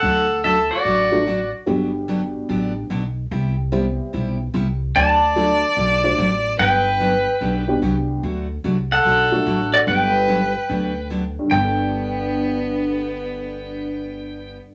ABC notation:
X:1
M:4/4
L:1/8
Q:"Swing" 1/4=146
K:G
V:1 name="Pedal steel guitar"
[Af]2 [Ae] [Fd]4 z | z8 | z8 | [da]8 |
[Bg]6 z2 | z3 [Af]4 [Fd] | [Bg]6 z2 | g8- |
g8 |]
V:2 name="Fiddle"
A2 A F4 z | z8 | z8 | d8 |
B6 z2 | z3 A4 F | B6 z2 | B,8- |
B,8 |]
V:3 name="Honky-tonk piano"
z4 z [F,A,DFA] z2 | [G,B,DFG]4- [G,B,DFG] z3 | z2 [G,B,CEG]3 z3 | z2 [F,A,DFA] z2 [F,A,DFc] z2 |
z4 z [G,B,DFG]3 | z4 z [F,A,DFA]3 | z8 | [G,,D,B,A]8- |
[G,,D,B,A]8 |]
V:4 name="Steel-string acoustic guitar"
[D,F,A,DF] z [D,F,A,DF] z [D,F,A,DF] z [D,F,A,DF] z | [D,F,B,DG] z [D,F,B,DG] z [D,F,B,DG] z [D,F,B,DG] z | [C,G,B,EG] z [C,G,B,EG] z [C,G,B,EG] z [C,G,B,EG] z | [D,F,A,DF] z [D,F,A,DF] z [D,F,A,DF] z [D,F,A,DF] z |
[D,F,B,DG] z [D,F,B,DG] z [D,F,B,DG] z [D,F,B,DG] z | [D,F,A,DF] z [D,F,A,DF] z [D,F,A,DF] z [D,F,A,DF] z | [D,F,B,DG] z [D,F,B,DG] z [D,F,B,DG] z [D,F,B,DG] z | [G,,D,B,DG]8- |
[G,,D,B,DG]8 |]
V:5 name="Upright bass" clef=bass
D,,4 A,,,4 | G,,,4 A,,,2 B,,,2 | C,,4 B,,,2 C,,2 | D,,4 B,,,2 A,,,2 |
G,,,4 B,,,2 C,,2 | D,,2 C,,2 B,,,2 A,,,2 | G,,,4 D,,4 | G,,,8- |
G,,,8 |]